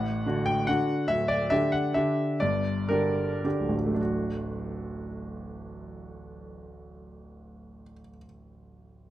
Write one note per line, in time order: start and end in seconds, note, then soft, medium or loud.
0.00 0.25 A1 soft
0.00 0.25 A2 soft
0.00 0.46 F#5 medium
0.26 0.64 D3 soft
0.26 0.64 D4 soft
0.26 0.65 F#4 soft
0.46 0.67 G5 medium
0.67 1.05 D3 soft
0.67 1.06 D4 soft
0.67 1.06 F#4 soft
0.67 1.09 F#5 medium
1.08 1.50 D1 soft
1.08 1.50 D2 soft
1.08 1.29 E5 medium
1.28 1.51 D5 medium
1.50 1.92 D3 soft
1.50 1.92 D4 soft
1.50 1.92 G4 soft
1.50 1.73 E5 medium
1.72 1.95 F#5 medium
1.94 2.38 D3 soft
1.94 2.38 D4 soft
1.94 2.38 G4 soft
1.94 2.41 E5 medium
2.40 2.88 G1 soft
2.40 2.88 G2 soft
2.40 2.89 D5 medium
2.89 3.41 D3 soft
2.89 3.41 D4 soft
2.89 3.41 G4 soft
2.89 3.74 A#4 medium
3.44 3.99 D3 soft
3.44 3.93 D4 soft
3.44 3.99 G4 soft
3.60 7.83 D1 soft
3.69 7.91 A1 soft
3.77 8.00 F#3 soft
3.86 8.08 A3 soft
3.94 8.17 D4 soft
4.01 8.24 F#4 soft